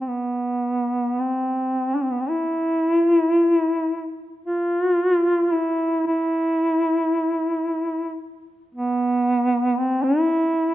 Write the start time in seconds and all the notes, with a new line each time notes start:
0.01 C4
0.08 B3
1.21 C4
1.95 D4
2.03 C4
2.12 B3
2.21 C4
2.29 E4
2.98 F4
3.13 E4
3.36 F4
3.51 E4
4.45 F4
5.53 E4
6.07 E4
8.75 B3
9.77 C4
10.04 E4